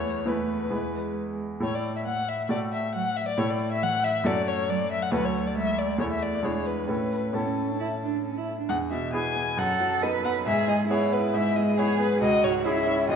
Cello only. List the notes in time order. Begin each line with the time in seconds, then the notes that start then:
Already playing: A3
0.28 A3
0.72 G#3
2.05 A3
2.94 F#3
3.83 E3
4.69 F#3
5.13 F#3
5.56 G#3
6.00 A3
6.44 G#3
6.88 A3
7.34 B3
7.46 C#4
7.69 D4
7.80 E4
8.02 D4
8.25 C#4
8.37 E4
8.59 D4
9.58 A4
10.03 B4
10.46 G#4
10.89 E4
11.76 G#4
12.21 F#4
12.65 E4
13.08 F#4